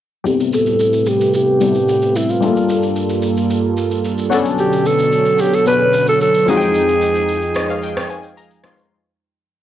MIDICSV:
0, 0, Header, 1, 5, 480
1, 0, Start_track
1, 0, Tempo, 540541
1, 232, Time_signature, 4, 2, 24, 8
1, 8551, End_track
2, 0, Start_track
2, 0, Title_t, "Alto saxophone"
2, 0, Program_c, 0, 65
2, 242, Note_on_c, 0, 67, 96
2, 348, Note_off_c, 0, 67, 0
2, 481, Note_on_c, 0, 69, 112
2, 962, Note_on_c, 0, 67, 98
2, 975, Note_off_c, 0, 69, 0
2, 1197, Note_off_c, 0, 67, 0
2, 1203, Note_on_c, 0, 67, 98
2, 1922, Note_on_c, 0, 64, 81
2, 1936, Note_off_c, 0, 67, 0
2, 2048, Note_on_c, 0, 65, 79
2, 2062, Note_off_c, 0, 64, 0
2, 2522, Note_off_c, 0, 65, 0
2, 4081, Note_on_c, 0, 67, 89
2, 4320, Note_on_c, 0, 69, 103
2, 4333, Note_off_c, 0, 67, 0
2, 4801, Note_on_c, 0, 67, 90
2, 4814, Note_off_c, 0, 69, 0
2, 4926, Note_on_c, 0, 69, 86
2, 4939, Note_off_c, 0, 67, 0
2, 5036, Note_off_c, 0, 69, 0
2, 5040, Note_on_c, 0, 71, 101
2, 5375, Note_off_c, 0, 71, 0
2, 5406, Note_on_c, 0, 69, 97
2, 5509, Note_off_c, 0, 69, 0
2, 5520, Note_on_c, 0, 69, 91
2, 5764, Note_on_c, 0, 68, 100
2, 5777, Note_off_c, 0, 69, 0
2, 7678, Note_off_c, 0, 68, 0
2, 8551, End_track
3, 0, Start_track
3, 0, Title_t, "Synth keys"
3, 0, Program_c, 1, 88
3, 214, Note_on_c, 1, 55, 64
3, 225, Note_on_c, 1, 59, 56
3, 236, Note_on_c, 1, 60, 60
3, 247, Note_on_c, 1, 64, 60
3, 257, Note_on_c, 1, 69, 69
3, 395, Control_c, 1, 64, 127
3, 1399, Note_off_c, 1, 55, 0
3, 1404, Note_off_c, 1, 59, 0
3, 1410, Note_off_c, 1, 60, 0
3, 1415, Note_off_c, 1, 64, 0
3, 1420, Note_off_c, 1, 69, 0
3, 1427, Note_on_c, 1, 55, 47
3, 1433, Note_on_c, 1, 59, 45
3, 1438, Note_on_c, 1, 60, 42
3, 1443, Note_on_c, 1, 64, 42
3, 1449, Note_on_c, 1, 69, 52
3, 2125, Note_off_c, 1, 55, 0
3, 2136, Note_on_c, 1, 55, 65
3, 2146, Note_on_c, 1, 57, 49
3, 2152, Note_off_c, 1, 59, 0
3, 2155, Note_off_c, 1, 60, 0
3, 2156, Note_on_c, 1, 62, 59
3, 2157, Note_off_c, 1, 64, 0
3, 2160, Note_off_c, 1, 69, 0
3, 2164, Control_c, 1, 64, 0
3, 2167, Note_on_c, 1, 65, 59
3, 2178, Note_on_c, 1, 69, 75
3, 2204, Note_on_c, 1, 58, 57
3, 2209, Note_off_c, 1, 57, 0
3, 2304, Control_c, 1, 64, 127
3, 3790, Note_off_c, 1, 55, 0
3, 3800, Note_off_c, 1, 62, 0
3, 3806, Note_off_c, 1, 65, 0
3, 3811, Note_off_c, 1, 69, 0
3, 3816, Note_on_c, 1, 54, 78
3, 3825, Note_off_c, 1, 58, 0
3, 3825, Note_on_c, 1, 59, 70
3, 3836, Note_on_c, 1, 61, 70
3, 3843, Control_c, 1, 64, 0
3, 3847, Note_on_c, 1, 62, 71
3, 3857, Note_on_c, 1, 69, 85
3, 4002, Control_c, 1, 64, 127
3, 4999, Note_off_c, 1, 54, 0
3, 5004, Note_off_c, 1, 59, 0
3, 5010, Note_off_c, 1, 61, 0
3, 5015, Note_off_c, 1, 62, 0
3, 5021, Note_off_c, 1, 69, 0
3, 5026, Note_on_c, 1, 54, 49
3, 5031, Note_on_c, 1, 59, 43
3, 5036, Note_on_c, 1, 61, 43
3, 5042, Note_on_c, 1, 62, 45
3, 5047, Note_on_c, 1, 71, 51
3, 5735, Note_on_c, 1, 53, 66
3, 5746, Note_on_c, 1, 56, 59
3, 5749, Note_off_c, 1, 54, 0
3, 5751, Note_off_c, 1, 59, 0
3, 5754, Note_off_c, 1, 61, 0
3, 5756, Note_on_c, 1, 60, 58
3, 5757, Note_off_c, 1, 62, 0
3, 5759, Note_off_c, 1, 71, 0
3, 5764, Control_c, 1, 64, 0
3, 5766, Note_on_c, 1, 63, 60
3, 5776, Note_on_c, 1, 66, 56
3, 5824, Note_off_c, 1, 66, 0
3, 5835, Note_on_c, 1, 79, 70
3, 5925, Control_c, 1, 64, 127
3, 6715, Note_on_c, 1, 75, 70
3, 6829, Note_off_c, 1, 75, 0
3, 6839, Note_on_c, 1, 77, 72
3, 6945, Note_off_c, 1, 77, 0
3, 6945, Note_off_c, 1, 79, 0
3, 6955, Note_on_c, 1, 79, 70
3, 7177, Note_off_c, 1, 79, 0
3, 7195, Note_on_c, 1, 80, 69
3, 7416, Note_off_c, 1, 80, 0
3, 7435, Note_on_c, 1, 82, 73
3, 7628, Note_off_c, 1, 53, 0
3, 7633, Note_off_c, 1, 56, 0
3, 7638, Note_off_c, 1, 60, 0
3, 7643, Note_off_c, 1, 63, 0
3, 7657, Note_off_c, 1, 82, 0
3, 7666, Note_on_c, 1, 53, 58
3, 7672, Note_on_c, 1, 56, 54
3, 7676, Note_on_c, 1, 60, 53
3, 7676, Note_on_c, 1, 84, 71
3, 7682, Note_on_c, 1, 63, 54
3, 7687, Note_on_c, 1, 65, 68
3, 7897, Note_off_c, 1, 84, 0
3, 7909, Note_off_c, 1, 53, 0
3, 7912, Note_off_c, 1, 56, 0
3, 7914, Note_off_c, 1, 60, 0
3, 7917, Note_off_c, 1, 63, 0
3, 7919, Note_off_c, 1, 65, 0
3, 7923, Control_c, 1, 64, 0
3, 8551, End_track
4, 0, Start_track
4, 0, Title_t, "Analog synth pad"
4, 0, Program_c, 2, 89
4, 229, Note_on_c, 2, 45, 77
4, 229, Note_on_c, 2, 48, 67
4, 229, Note_on_c, 2, 57, 69
4, 230, Note_on_c, 2, 67, 69
4, 231, Note_on_c, 2, 71, 84
4, 2131, Note_off_c, 2, 45, 0
4, 2131, Note_off_c, 2, 48, 0
4, 2131, Note_off_c, 2, 57, 0
4, 2132, Note_off_c, 2, 67, 0
4, 2132, Note_off_c, 2, 71, 0
4, 2151, Note_on_c, 2, 43, 75
4, 2151, Note_on_c, 2, 69, 82
4, 2152, Note_on_c, 2, 55, 70
4, 2152, Note_on_c, 2, 58, 71
4, 2153, Note_on_c, 2, 65, 69
4, 3815, Note_off_c, 2, 43, 0
4, 3815, Note_off_c, 2, 55, 0
4, 3815, Note_off_c, 2, 58, 0
4, 3815, Note_off_c, 2, 65, 0
4, 3831, Note_on_c, 2, 50, 70
4, 3832, Note_on_c, 2, 47, 78
4, 3832, Note_on_c, 2, 54, 67
4, 3832, Note_on_c, 2, 73, 69
4, 5716, Note_off_c, 2, 69, 0
4, 5732, Note_off_c, 2, 50, 0
4, 5732, Note_off_c, 2, 54, 0
4, 5732, Note_off_c, 2, 73, 0
4, 5733, Note_off_c, 2, 47, 0
4, 5748, Note_on_c, 2, 53, 69
4, 5749, Note_on_c, 2, 41, 75
4, 5749, Note_on_c, 2, 56, 70
4, 5749, Note_on_c, 2, 63, 70
4, 5749, Note_on_c, 2, 79, 86
4, 7888, Note_off_c, 2, 53, 0
4, 7889, Note_off_c, 2, 41, 0
4, 7889, Note_off_c, 2, 56, 0
4, 7889, Note_off_c, 2, 63, 0
4, 7889, Note_off_c, 2, 79, 0
4, 8551, End_track
5, 0, Start_track
5, 0, Title_t, "Drums"
5, 231, Note_on_c, 9, 82, 56
5, 320, Note_off_c, 9, 82, 0
5, 357, Note_on_c, 9, 82, 49
5, 446, Note_off_c, 9, 82, 0
5, 471, Note_on_c, 9, 82, 98
5, 560, Note_off_c, 9, 82, 0
5, 590, Note_on_c, 9, 82, 54
5, 679, Note_off_c, 9, 82, 0
5, 708, Note_on_c, 9, 82, 68
5, 796, Note_off_c, 9, 82, 0
5, 828, Note_on_c, 9, 82, 50
5, 917, Note_off_c, 9, 82, 0
5, 943, Note_on_c, 9, 82, 86
5, 1032, Note_off_c, 9, 82, 0
5, 1075, Note_on_c, 9, 82, 60
5, 1164, Note_off_c, 9, 82, 0
5, 1190, Note_on_c, 9, 82, 71
5, 1279, Note_off_c, 9, 82, 0
5, 1430, Note_on_c, 9, 82, 94
5, 1519, Note_off_c, 9, 82, 0
5, 1553, Note_on_c, 9, 82, 47
5, 1642, Note_off_c, 9, 82, 0
5, 1675, Note_on_c, 9, 82, 74
5, 1764, Note_off_c, 9, 82, 0
5, 1796, Note_on_c, 9, 82, 58
5, 1884, Note_off_c, 9, 82, 0
5, 1916, Note_on_c, 9, 82, 99
5, 2005, Note_off_c, 9, 82, 0
5, 2037, Note_on_c, 9, 82, 49
5, 2126, Note_off_c, 9, 82, 0
5, 2152, Note_on_c, 9, 82, 53
5, 2241, Note_off_c, 9, 82, 0
5, 2279, Note_on_c, 9, 82, 46
5, 2367, Note_off_c, 9, 82, 0
5, 2393, Note_on_c, 9, 82, 96
5, 2482, Note_off_c, 9, 82, 0
5, 2512, Note_on_c, 9, 82, 54
5, 2601, Note_off_c, 9, 82, 0
5, 2628, Note_on_c, 9, 82, 66
5, 2717, Note_off_c, 9, 82, 0
5, 2749, Note_on_c, 9, 82, 51
5, 2838, Note_off_c, 9, 82, 0
5, 2863, Note_on_c, 9, 82, 81
5, 2952, Note_off_c, 9, 82, 0
5, 2995, Note_on_c, 9, 82, 59
5, 3084, Note_off_c, 9, 82, 0
5, 3111, Note_on_c, 9, 82, 69
5, 3200, Note_off_c, 9, 82, 0
5, 3351, Note_on_c, 9, 82, 100
5, 3439, Note_off_c, 9, 82, 0
5, 3473, Note_on_c, 9, 82, 48
5, 3562, Note_off_c, 9, 82, 0
5, 3594, Note_on_c, 9, 82, 72
5, 3683, Note_off_c, 9, 82, 0
5, 3715, Note_on_c, 9, 82, 54
5, 3803, Note_off_c, 9, 82, 0
5, 3836, Note_on_c, 9, 82, 103
5, 3925, Note_off_c, 9, 82, 0
5, 3957, Note_on_c, 9, 82, 49
5, 4046, Note_off_c, 9, 82, 0
5, 4070, Note_on_c, 9, 82, 57
5, 4159, Note_off_c, 9, 82, 0
5, 4198, Note_on_c, 9, 82, 49
5, 4287, Note_off_c, 9, 82, 0
5, 4312, Note_on_c, 9, 82, 95
5, 4401, Note_off_c, 9, 82, 0
5, 4431, Note_on_c, 9, 82, 56
5, 4520, Note_off_c, 9, 82, 0
5, 4548, Note_on_c, 9, 82, 65
5, 4637, Note_off_c, 9, 82, 0
5, 4669, Note_on_c, 9, 82, 50
5, 4758, Note_off_c, 9, 82, 0
5, 4783, Note_on_c, 9, 82, 86
5, 4872, Note_off_c, 9, 82, 0
5, 4915, Note_on_c, 9, 82, 60
5, 5003, Note_off_c, 9, 82, 0
5, 5029, Note_on_c, 9, 82, 72
5, 5118, Note_off_c, 9, 82, 0
5, 5269, Note_on_c, 9, 82, 99
5, 5358, Note_off_c, 9, 82, 0
5, 5392, Note_on_c, 9, 82, 47
5, 5480, Note_off_c, 9, 82, 0
5, 5513, Note_on_c, 9, 82, 72
5, 5601, Note_off_c, 9, 82, 0
5, 5633, Note_on_c, 9, 82, 59
5, 5722, Note_off_c, 9, 82, 0
5, 5755, Note_on_c, 9, 82, 98
5, 5844, Note_off_c, 9, 82, 0
5, 5876, Note_on_c, 9, 82, 48
5, 5965, Note_off_c, 9, 82, 0
5, 5990, Note_on_c, 9, 82, 56
5, 6079, Note_off_c, 9, 82, 0
5, 6116, Note_on_c, 9, 82, 49
5, 6205, Note_off_c, 9, 82, 0
5, 6230, Note_on_c, 9, 82, 100
5, 6319, Note_off_c, 9, 82, 0
5, 6352, Note_on_c, 9, 82, 54
5, 6440, Note_off_c, 9, 82, 0
5, 6468, Note_on_c, 9, 82, 69
5, 6557, Note_off_c, 9, 82, 0
5, 6589, Note_on_c, 9, 82, 50
5, 6678, Note_off_c, 9, 82, 0
5, 6703, Note_on_c, 9, 82, 90
5, 6712, Note_on_c, 9, 37, 86
5, 6792, Note_off_c, 9, 82, 0
5, 6801, Note_off_c, 9, 37, 0
5, 6835, Note_on_c, 9, 82, 62
5, 6924, Note_off_c, 9, 82, 0
5, 6951, Note_on_c, 9, 82, 68
5, 7040, Note_off_c, 9, 82, 0
5, 7077, Note_on_c, 9, 37, 99
5, 7083, Note_on_c, 9, 82, 43
5, 7165, Note_off_c, 9, 37, 0
5, 7172, Note_off_c, 9, 82, 0
5, 7191, Note_on_c, 9, 82, 104
5, 7280, Note_off_c, 9, 82, 0
5, 7313, Note_on_c, 9, 82, 47
5, 7402, Note_off_c, 9, 82, 0
5, 7435, Note_on_c, 9, 82, 74
5, 7523, Note_off_c, 9, 82, 0
5, 7555, Note_on_c, 9, 82, 57
5, 7644, Note_off_c, 9, 82, 0
5, 7668, Note_on_c, 9, 37, 87
5, 7677, Note_on_c, 9, 82, 103
5, 7757, Note_off_c, 9, 37, 0
5, 7766, Note_off_c, 9, 82, 0
5, 7798, Note_on_c, 9, 82, 49
5, 7886, Note_off_c, 9, 82, 0
5, 8551, End_track
0, 0, End_of_file